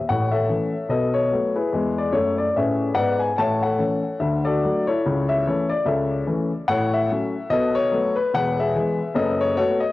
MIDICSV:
0, 0, Header, 1, 2, 480
1, 0, Start_track
1, 0, Tempo, 413508
1, 67, Time_signature, 4, 2, 24, 8
1, 11519, End_track
2, 0, Start_track
2, 0, Title_t, "Upright piano"
2, 0, Program_c, 0, 0
2, 104, Note_on_c, 0, 78, 84
2, 109, Note_on_c, 0, 33, 65
2, 115, Note_on_c, 0, 45, 68
2, 301, Control_c, 0, 64, 127
2, 365, Note_on_c, 0, 76, 75
2, 367, Note_off_c, 0, 78, 0
2, 381, Note_on_c, 0, 69, 58
2, 388, Note_on_c, 0, 73, 51
2, 499, Note_off_c, 0, 33, 0
2, 503, Note_off_c, 0, 45, 0
2, 562, Control_c, 0, 64, 0
2, 571, Note_on_c, 0, 52, 37
2, 572, Note_on_c, 0, 61, 37
2, 578, Note_on_c, 0, 57, 37
2, 829, Note_off_c, 0, 52, 0
2, 829, Note_off_c, 0, 61, 0
2, 834, Note_off_c, 0, 57, 0
2, 998, Note_off_c, 0, 69, 0
2, 1001, Note_off_c, 0, 73, 0
2, 1031, Note_on_c, 0, 35, 54
2, 1036, Note_off_c, 0, 76, 0
2, 1043, Note_on_c, 0, 47, 60
2, 1045, Note_on_c, 0, 75, 72
2, 1052, Note_on_c, 0, 69, 59
2, 1055, Note_on_c, 0, 71, 49
2, 1263, Control_c, 0, 64, 127
2, 1302, Note_off_c, 0, 69, 0
2, 1304, Note_off_c, 0, 71, 0
2, 1317, Note_off_c, 0, 75, 0
2, 1323, Note_on_c, 0, 73, 82
2, 1438, Note_off_c, 0, 35, 0
2, 1445, Note_off_c, 0, 47, 0
2, 1521, Control_c, 0, 64, 0
2, 1527, Note_on_c, 0, 54, 39
2, 1545, Note_on_c, 0, 59, 43
2, 1548, Note_on_c, 0, 57, 42
2, 1786, Note_off_c, 0, 54, 0
2, 1796, Note_off_c, 0, 73, 0
2, 1799, Note_off_c, 0, 59, 0
2, 1801, Note_off_c, 0, 57, 0
2, 1806, Note_on_c, 0, 71, 66
2, 1807, Note_on_c, 0, 68, 54
2, 1809, Note_on_c, 0, 64, 58
2, 2004, Note_on_c, 0, 40, 61
2, 2021, Note_on_c, 0, 56, 66
2, 2187, Control_c, 0, 64, 127
2, 2245, Note_off_c, 0, 68, 0
2, 2246, Note_off_c, 0, 64, 0
2, 2277, Note_off_c, 0, 71, 0
2, 2301, Note_on_c, 0, 74, 72
2, 2382, Note_off_c, 0, 40, 0
2, 2392, Note_off_c, 0, 56, 0
2, 2466, Note_on_c, 0, 42, 56
2, 2466, Note_on_c, 0, 73, 79
2, 2484, Note_off_c, 0, 74, 0
2, 2485, Control_c, 0, 64, 0
2, 2487, Note_on_c, 0, 57, 64
2, 2748, Note_off_c, 0, 73, 0
2, 2762, Note_on_c, 0, 74, 73
2, 2851, Note_off_c, 0, 42, 0
2, 2863, Note_off_c, 0, 57, 0
2, 2955, Note_off_c, 0, 74, 0
2, 2972, Note_on_c, 0, 45, 55
2, 2979, Note_on_c, 0, 76, 72
2, 2985, Note_on_c, 0, 68, 54
2, 2993, Note_on_c, 0, 61, 61
2, 2993, Note_on_c, 0, 71, 60
2, 3346, Note_off_c, 0, 45, 0
2, 3359, Note_off_c, 0, 61, 0
2, 3414, Note_off_c, 0, 68, 0
2, 3415, Note_on_c, 0, 44, 69
2, 3418, Note_off_c, 0, 71, 0
2, 3421, Note_on_c, 0, 78, 93
2, 3437, Note_on_c, 0, 71, 64
2, 3439, Note_on_c, 0, 74, 69
2, 3440, Note_on_c, 0, 59, 72
2, 3444, Note_off_c, 0, 76, 0
2, 3694, Note_off_c, 0, 71, 0
2, 3695, Note_off_c, 0, 74, 0
2, 3705, Note_off_c, 0, 78, 0
2, 3709, Note_on_c, 0, 80, 74
2, 3804, Note_off_c, 0, 44, 0
2, 3819, Note_off_c, 0, 59, 0
2, 3908, Note_off_c, 0, 80, 0
2, 3921, Note_on_c, 0, 45, 77
2, 3924, Note_on_c, 0, 33, 57
2, 3925, Note_on_c, 0, 81, 91
2, 3949, Note_on_c, 0, 73, 69
2, 3954, Note_on_c, 0, 76, 71
2, 4136, Control_c, 0, 64, 127
2, 4191, Note_off_c, 0, 73, 0
2, 4194, Note_off_c, 0, 76, 0
2, 4197, Note_off_c, 0, 81, 0
2, 4207, Note_on_c, 0, 78, 77
2, 4230, Note_on_c, 0, 73, 57
2, 4233, Note_on_c, 0, 69, 57
2, 4324, Note_off_c, 0, 45, 0
2, 4325, Note_off_c, 0, 33, 0
2, 4391, Note_on_c, 0, 52, 39
2, 4391, Note_on_c, 0, 57, 39
2, 4394, Note_on_c, 0, 61, 42
2, 4405, Control_c, 0, 64, 0
2, 4654, Note_off_c, 0, 52, 0
2, 4654, Note_off_c, 0, 57, 0
2, 4657, Note_off_c, 0, 61, 0
2, 4842, Note_off_c, 0, 73, 0
2, 4844, Note_off_c, 0, 69, 0
2, 4869, Note_on_c, 0, 50, 67
2, 4873, Note_on_c, 0, 76, 71
2, 4877, Note_off_c, 0, 78, 0
2, 4880, Note_on_c, 0, 38, 57
2, 5097, Control_c, 0, 64, 127
2, 5151, Note_off_c, 0, 76, 0
2, 5161, Note_on_c, 0, 74, 82
2, 5167, Note_on_c, 0, 69, 62
2, 5177, Note_on_c, 0, 66, 65
2, 5277, Note_off_c, 0, 50, 0
2, 5283, Note_off_c, 0, 38, 0
2, 5364, Control_c, 0, 64, 0
2, 5389, Note_on_c, 0, 54, 52
2, 5392, Note_on_c, 0, 57, 46
2, 5401, Note_on_c, 0, 62, 48
2, 5605, Note_off_c, 0, 69, 0
2, 5610, Note_off_c, 0, 66, 0
2, 5635, Note_off_c, 0, 74, 0
2, 5642, Note_off_c, 0, 54, 0
2, 5644, Note_off_c, 0, 57, 0
2, 5650, Note_off_c, 0, 62, 0
2, 5657, Note_on_c, 0, 73, 84
2, 5669, Note_on_c, 0, 64, 63
2, 5675, Note_on_c, 0, 69, 61
2, 5868, Note_on_c, 0, 49, 76
2, 5872, Note_on_c, 0, 37, 68
2, 6058, Control_c, 0, 64, 127
2, 6097, Note_off_c, 0, 64, 0
2, 6100, Note_off_c, 0, 69, 0
2, 6123, Note_off_c, 0, 73, 0
2, 6140, Note_on_c, 0, 76, 89
2, 6259, Note_off_c, 0, 49, 0
2, 6262, Note_off_c, 0, 37, 0
2, 6322, Control_c, 0, 64, 0
2, 6323, Note_off_c, 0, 76, 0
2, 6352, Note_on_c, 0, 52, 47
2, 6354, Note_on_c, 0, 73, 80
2, 6362, Note_on_c, 0, 57, 45
2, 6366, Note_on_c, 0, 61, 45
2, 6370, Note_on_c, 0, 64, 58
2, 6373, Note_on_c, 0, 69, 58
2, 6603, Note_off_c, 0, 64, 0
2, 6604, Note_off_c, 0, 52, 0
2, 6604, Note_off_c, 0, 69, 0
2, 6609, Note_on_c, 0, 74, 82
2, 6611, Note_off_c, 0, 57, 0
2, 6612, Note_off_c, 0, 73, 0
2, 6614, Note_off_c, 0, 61, 0
2, 6793, Note_on_c, 0, 49, 64
2, 6795, Note_on_c, 0, 37, 64
2, 6798, Note_off_c, 0, 74, 0
2, 6806, Note_on_c, 0, 76, 72
2, 6815, Note_on_c, 0, 69, 60
2, 6823, Note_on_c, 0, 73, 57
2, 7199, Note_off_c, 0, 49, 0
2, 7200, Note_off_c, 0, 37, 0
2, 7249, Note_off_c, 0, 69, 0
2, 7253, Note_off_c, 0, 73, 0
2, 7277, Note_off_c, 0, 76, 0
2, 7278, Note_on_c, 0, 61, 51
2, 7283, Note_on_c, 0, 52, 57
2, 7286, Note_on_c, 0, 57, 47
2, 7539, Note_off_c, 0, 61, 0
2, 7543, Note_off_c, 0, 52, 0
2, 7545, Note_off_c, 0, 57, 0
2, 7754, Note_on_c, 0, 78, 110
2, 7755, Note_on_c, 0, 33, 72
2, 7763, Note_on_c, 0, 45, 82
2, 7776, Note_on_c, 0, 69, 74
2, 7789, Note_on_c, 0, 73, 84
2, 7951, Control_c, 0, 64, 127
2, 8024, Note_off_c, 0, 69, 0
2, 8031, Note_off_c, 0, 73, 0
2, 8032, Note_off_c, 0, 78, 0
2, 8052, Note_on_c, 0, 76, 89
2, 8160, Note_off_c, 0, 33, 0
2, 8164, Note_off_c, 0, 45, 0
2, 8239, Control_c, 0, 64, 0
2, 8252, Note_on_c, 0, 54, 50
2, 8254, Note_on_c, 0, 57, 44
2, 8264, Note_on_c, 0, 61, 53
2, 8509, Note_off_c, 0, 54, 0
2, 8511, Note_off_c, 0, 57, 0
2, 8518, Note_off_c, 0, 61, 0
2, 8705, Note_on_c, 0, 47, 80
2, 8709, Note_on_c, 0, 75, 102
2, 8714, Note_on_c, 0, 35, 64
2, 8719, Note_off_c, 0, 76, 0
2, 8735, Note_on_c, 0, 69, 70
2, 8737, Note_on_c, 0, 71, 71
2, 8949, Control_c, 0, 64, 127
2, 8984, Note_off_c, 0, 69, 0
2, 8985, Note_off_c, 0, 71, 0
2, 8989, Note_off_c, 0, 75, 0
2, 8997, Note_on_c, 0, 73, 99
2, 9114, Note_off_c, 0, 47, 0
2, 9120, Note_off_c, 0, 35, 0
2, 9190, Note_on_c, 0, 54, 58
2, 9196, Note_on_c, 0, 59, 57
2, 9197, Control_c, 0, 64, 0
2, 9199, Note_on_c, 0, 57, 57
2, 9453, Note_off_c, 0, 54, 0
2, 9458, Note_off_c, 0, 59, 0
2, 9460, Note_off_c, 0, 57, 0
2, 9469, Note_on_c, 0, 71, 90
2, 9473, Note_off_c, 0, 73, 0
2, 9668, Note_off_c, 0, 71, 0
2, 9680, Note_on_c, 0, 40, 88
2, 9681, Note_on_c, 0, 28, 73
2, 9688, Note_on_c, 0, 78, 106
2, 9704, Note_on_c, 0, 71, 91
2, 9899, Control_c, 0, 64, 127
2, 9948, Note_off_c, 0, 71, 0
2, 9959, Note_off_c, 0, 78, 0
2, 9980, Note_on_c, 0, 76, 82
2, 9992, Note_on_c, 0, 68, 60
2, 9994, Note_on_c, 0, 71, 58
2, 10083, Note_off_c, 0, 28, 0
2, 10083, Note_off_c, 0, 40, 0
2, 10162, Control_c, 0, 64, 0
2, 10162, Note_on_c, 0, 52, 56
2, 10165, Note_on_c, 0, 56, 53
2, 10176, Note_on_c, 0, 59, 54
2, 10422, Note_off_c, 0, 52, 0
2, 10424, Note_off_c, 0, 56, 0
2, 10432, Note_off_c, 0, 59, 0
2, 10603, Note_off_c, 0, 68, 0
2, 10604, Note_off_c, 0, 71, 0
2, 10614, Note_on_c, 0, 30, 79
2, 10626, Note_on_c, 0, 42, 82
2, 10629, Note_on_c, 0, 75, 91
2, 10633, Note_on_c, 0, 69, 74
2, 10643, Note_off_c, 0, 76, 0
2, 10651, Note_on_c, 0, 71, 70
2, 10857, Control_c, 0, 64, 127
2, 10892, Note_off_c, 0, 69, 0
2, 10901, Note_off_c, 0, 71, 0
2, 10909, Note_off_c, 0, 75, 0
2, 10920, Note_on_c, 0, 73, 101
2, 11028, Note_off_c, 0, 30, 0
2, 11034, Note_off_c, 0, 42, 0
2, 11093, Note_off_c, 0, 73, 0
2, 11103, Note_on_c, 0, 57, 52
2, 11110, Note_on_c, 0, 73, 107
2, 11114, Note_on_c, 0, 66, 83
2, 11116, Note_on_c, 0, 59, 55
2, 11123, Control_c, 0, 64, 0
2, 11125, Note_on_c, 0, 69, 83
2, 11368, Note_off_c, 0, 57, 0
2, 11372, Note_off_c, 0, 66, 0
2, 11377, Note_off_c, 0, 59, 0
2, 11378, Note_off_c, 0, 69, 0
2, 11380, Note_on_c, 0, 75, 86
2, 11390, Note_off_c, 0, 73, 0
2, 11519, Note_off_c, 0, 75, 0
2, 11519, End_track
0, 0, End_of_file